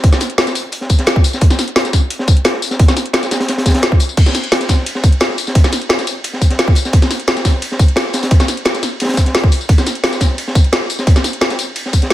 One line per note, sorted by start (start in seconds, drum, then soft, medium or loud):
0.04 kick loud
0.04 closed hi-hat medium
0.13 snare soft
0.13 snare medium
0.13 snare soft
0.13 closed hi-hat soft
0.13 tambourine soft
0.20 snare soft
0.20 closed hi-hat medium
0.20 tambourine medium
0.30 closed hi-hat soft
0.38 snare loud
0.38 closed hi-hat medium
0.38 closed hi-hat loud
0.47 snare medium
0.47 closed hi-hat soft
0.47 tambourine soft
0.55 closed hi-hat medium
0.55 tambourine medium
0.72 closed hi-hat medium
0.81 snare soft
0.89 kick medium
0.89 closed hi-hat medium
0.89 tambourine medium
0.99 snare soft
0.99 closed hi-hat soft
1.07 snare loud
1.07 closed hi-hat medium
1.07 closed hi-hat loud
1.16 kick loud
1.24 closed hi-hat medium
1.24 open hi-hat medium
1.24 tambourine medium
1.33 snare soft
1.33 tambourine soft
1.41 kick loud
1.41 closed hi-hat loud
1.50 snare soft
1.50 closed hi-hat soft
1.50 tambourine soft
1.59 snare soft
1.59 closed hi-hat medium
1.59 tambourine medium
1.68 closed hi-hat soft
1.76 snare loud
1.76 closed hi-hat medium
1.76 closed hi-hat loud
1.85 snare medium
1.85 closed hi-hat soft
1.85 tambourine soft
1.93 kick medium
1.93 snare soft
1.93 closed hi-hat medium
1.93 tambourine medium
2.10 closed hi-hat medium
2.10 closed hi-hat loud
2.19 snare medium
2.28 kick loud
2.28 closed hi-hat medium
2.28 tambourine medium
2.37 closed hi-hat soft
2.45 snare loud
2.45 closed hi-hat medium
2.45 closed hi-hat loud
2.54 snare soft
2.62 closed hi-hat medium
2.62 open hi-hat medium
2.62 tambourine medium
2.71 snare medium
2.71 tambourine soft
2.79 kick loud
2.79 closed hi-hat loud
2.79 closed hi-hat medium
2.88 snare medium
2.88 snare soft
2.88 closed hi-hat soft
2.88 tambourine soft
2.96 snare soft
2.96 closed hi-hat medium
2.96 tambourine medium
3.06 closed hi-hat soft
3.13 snare loud
3.13 closed hi-hat loud
3.13 closed hi-hat medium
3.23 snare medium
3.23 closed hi-hat soft
3.23 tambourine soft
3.31 snare loud
3.31 snare soft
3.31 closed hi-hat medium
3.31 tambourine medium
3.40 snare loud
3.40 closed hi-hat medium
3.48 snare loud
3.48 closed hi-hat loud
3.48 closed hi-hat medium
3.58 snare loud
3.58 closed hi-hat medium
3.66 kick medium
3.66 snare loud
3.66 closed hi-hat medium
3.66 tambourine medium
3.70 snare medium
3.70 closed hi-hat medium
3.74 snare loud
3.74 closed hi-hat soft
3.74 closed hi-hat medium
3.83 snare loud
3.83 closed hi-hat medium
3.83 closed hi-hat loud
3.92 kick loud
4.00 closed hi-hat medium
4.00 open hi-hat medium
4.00 tambourine medium
4.09 tambourine soft
4.17 kick loud
4.17 closed hi-hat loud
4.17 closed hi-hat medium
4.17 crash medium
4.17 ride medium
4.26 snare medium
4.26 snare soft
4.26 closed hi-hat soft
4.26 tambourine soft
4.35 snare soft
4.35 closed hi-hat medium
4.35 ride medium
4.35 tambourine medium
4.44 closed hi-hat soft
4.52 snare loud
4.52 closed hi-hat loud
4.52 ride medium
4.60 snare medium
4.60 closed hi-hat soft
4.60 tambourine soft
4.69 kick medium
4.69 snare medium
4.69 snare soft
4.69 closed hi-hat medium
4.69 ride medium
4.69 tambourine medium
4.86 closed hi-hat medium
4.86 ride medium
4.95 snare soft
5.04 kick loud
5.04 closed hi-hat medium
5.04 ride medium
5.04 tambourine medium
5.12 closed hi-hat soft
5.20 snare loud
5.20 closed hi-hat medium
5.20 closed hi-hat loud
5.20 ride medium
5.30 snare soft
5.38 closed hi-hat medium
5.38 open hi-hat medium
5.38 ride medium
5.38 tambourine medium
5.47 snare medium
5.47 tambourine soft
5.55 kick loud
5.55 closed hi-hat loud
5.55 closed hi-hat medium
5.55 ride medium
5.64 snare medium
5.64 snare soft
5.64 closed hi-hat soft
5.64 tambourine soft
5.72 snare soft
5.72 closed hi-hat medium
5.72 ride medium
5.72 tambourine medium
5.82 closed hi-hat soft
5.89 snare loud
5.89 closed hi-hat medium
5.89 closed hi-hat loud
5.89 ride medium
5.99 snare medium
5.99 closed hi-hat soft
5.99 tambourine soft
6.07 closed hi-hat medium
6.07 ride medium
6.07 tambourine medium
6.24 closed hi-hat medium
6.24 closed hi-hat loud
6.24 ride medium
6.33 snare soft
6.41 kick medium
6.41 closed hi-hat medium
6.41 ride soft
6.41 tambourine medium
6.50 snare soft
6.50 closed hi-hat soft
6.59 snare loud
6.59 closed hi-hat loud
6.59 ride medium
6.68 kick loud
6.75 closed hi-hat medium
6.75 open hi-hat medium
6.75 ride medium
6.75 tambourine medium
6.85 snare soft
6.85 tambourine soft
6.93 kick loud
6.93 closed hi-hat medium
6.93 ride medium
7.02 snare soft
7.02 closed hi-hat soft
7.02 tambourine soft
7.11 snare soft
7.11 closed hi-hat medium
7.11 ride medium
7.11 tambourine medium
7.20 closed hi-hat soft
7.28 snare loud
7.28 closed hi-hat medium
7.28 ride medium
7.37 snare medium
7.37 closed hi-hat soft
7.37 tambourine soft
7.45 kick medium
7.45 snare medium
7.45 snare soft
7.45 closed hi-hat medium
7.45 ride medium
7.45 tambourine medium
7.62 closed hi-hat medium
7.62 ride medium
7.72 snare soft
7.79 kick loud
7.79 closed hi-hat medium
7.79 ride medium
7.79 tambourine medium
7.88 closed hi-hat soft
7.96 snare loud
7.96 closed hi-hat medium
7.96 ride medium
8.05 snare soft
8.13 snare loud
8.13 closed hi-hat medium
8.13 open hi-hat medium
8.13 ride medium
8.13 tambourine medium
8.23 snare loud
8.23 closed hi-hat medium
8.23 tambourine soft
8.31 kick loud
8.31 closed hi-hat medium
8.31 ride medium
8.40 snare soft
8.40 snare medium
8.40 snare soft
8.40 closed hi-hat soft
8.40 tambourine soft
8.48 snare soft
8.48 closed hi-hat medium
8.48 ride medium
8.48 tambourine medium
8.57 closed hi-hat soft
8.65 snare loud
8.65 closed hi-hat medium
8.65 ride medium
8.74 snare medium
8.74 closed hi-hat soft
8.74 tambourine soft
8.83 snare soft
8.83 closed hi-hat medium
8.83 ride medium
8.83 tambourine medium
9.00 snare medium
9.00 closed hi-hat medium
9.00 ride medium
9.04 snare medium
9.04 closed hi-hat medium
9.09 snare medium
9.09 closed hi-hat medium
9.13 snare medium
9.13 closed hi-hat medium
9.17 kick medium
9.17 closed hi-hat medium
9.17 ride medium
9.17 tambourine medium
9.26 snare soft
9.26 closed hi-hat soft
9.35 snare loud
9.35 closed hi-hat medium
9.35 ride medium
9.44 kick loud
9.52 closed hi-hat medium
9.52 open hi-hat medium
9.52 ride medium
9.52 tambourine medium
9.61 tambourine soft
9.69 kick loud
9.69 closed hi-hat medium
9.69 ride medium
9.78 snare medium
9.78 snare soft
9.78 closed hi-hat soft
9.78 tambourine soft
9.86 snare soft
9.86 closed hi-hat medium
9.86 ride medium
9.86 tambourine medium
9.95 closed hi-hat soft
10.04 snare loud
10.04 closed hi-hat medium
10.04 closed hi-hat loud
10.04 ride medium
10.12 snare soft
10.12 closed hi-hat soft
10.12 tambourine soft
10.21 kick medium
10.21 snare medium
10.21 snare soft
10.21 closed hi-hat medium
10.21 ride medium
10.21 tambourine medium
10.38 closed hi-hat medium
10.38 ride medium
10.48 snare medium
10.55 kick loud
10.55 closed hi-hat medium
10.55 ride medium
10.55 tambourine medium
10.64 closed hi-hat soft
10.72 snare loud
10.72 closed hi-hat medium
10.72 ride medium
10.82 snare soft
10.90 closed hi-hat medium
10.90 open hi-hat medium
10.90 ride medium
10.90 tambourine medium
10.99 snare medium
10.99 tambourine soft
11.07 kick loud
11.07 closed hi-hat medium
11.07 closed hi-hat loud
11.07 ride medium
11.16 snare soft
11.16 snare medium
11.16 snare soft
11.16 closed hi-hat soft
11.16 tambourine soft
11.24 snare soft
11.24 closed hi-hat medium
11.24 ride medium
11.24 tambourine medium
11.33 closed hi-hat soft
11.41 snare loud
11.41 closed hi-hat medium
11.41 closed hi-hat loud
11.41 ride medium
11.50 snare medium
11.50 closed hi-hat soft
11.50 tambourine soft
11.59 closed hi-hat medium
11.59 ride medium
11.59 tambourine medium
11.76 closed hi-hat medium
11.76 ride medium
11.86 snare soft
11.93 kick medium
11.93 closed hi-hat medium
11.93 ride medium
11.93 tambourine medium
12.02 snare soft
12.02 closed hi-hat soft
12.10 snare loud
12.10 closed hi-hat loud
12.10 ride medium